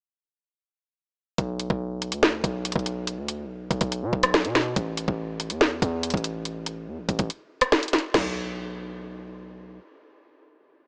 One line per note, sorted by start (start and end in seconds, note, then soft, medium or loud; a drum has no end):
1.38 1.69 B1 loud
1.38 kick loud
1.38 closed hi-hat medium
1.59 closed hi-hat medium
1.70 2.14 B1 loud
1.70 kick medium
2.02 closed hi-hat medium
2.12 2.42 D2 loud
2.12 closed hi-hat medium
2.23 snare loud
2.44 2.74 B1 loud
2.44 kick medium
2.44 closed hi-hat medium
2.65 closed hi-hat medium
2.72 3.19 B1 loud
2.72 kick medium
2.72 closed hi-hat medium
2.79 closed hi-hat medium
2.86 closed hi-hat medium
3.07 closed hi-hat medium
3.18 3.46 D2 loud
3.28 closed hi-hat medium
3.44 3.69 B1 loud
3.71 3.81 B1 loud
3.71 kick loud
3.71 closed hi-hat medium
3.81 4.04 B1 loud
3.81 kick loud
3.81 closed hi-hat medium
3.92 closed hi-hat medium
4.02 4.12 B2 loud
4.13 4.46 B1 loud
4.13 kick medium
4.23 cross-stick loud
4.23 closed hi-hat medium
4.34 snare loud
4.45 4.75 B2 loud
4.45 closed hi-hat medium
4.55 snare medium
4.55 closed hi-hat soft
4.55 open hi-hat medium
4.76 5.07 A1 loud
4.76 kick loud
4.76 closed hi-hat medium
4.97 closed hi-hat medium
5.08 5.52 A1 loud
5.08 kick loud
5.40 closed hi-hat medium
5.50 5.80 E2 loud
5.50 closed hi-hat medium
5.61 snare loud
5.82 6.12 E2 loud
5.82 kick medium
5.82 closed hi-hat loud
6.03 closed hi-hat medium
6.10 6.89 A1 loud
6.10 kick medium
6.10 closed hi-hat medium
6.17 closed hi-hat medium
6.24 closed hi-hat medium
6.45 closed hi-hat medium
6.66 closed hi-hat medium
6.88 7.00 E2 loud
6.98 7.08 A1 loud
7.09 7.19 A1 loud
7.09 kick loud
7.09 closed hi-hat medium
7.19 7.29 A1 loud
7.19 kick loud
7.19 closed hi-hat medium
7.30 closed hi-hat medium
7.61 cross-stick loud
7.61 closed hi-hat medium
7.72 snare loud
7.83 closed hi-hat medium
7.88 closed hi-hat medium
7.93 snare medium
7.93 closed hi-hat medium
7.93 open hi-hat medium
7.99 closed hi-hat soft
8.14 9.79 B1 loud
8.14 snare loud
8.14 floor tom loud
8.14 crash medium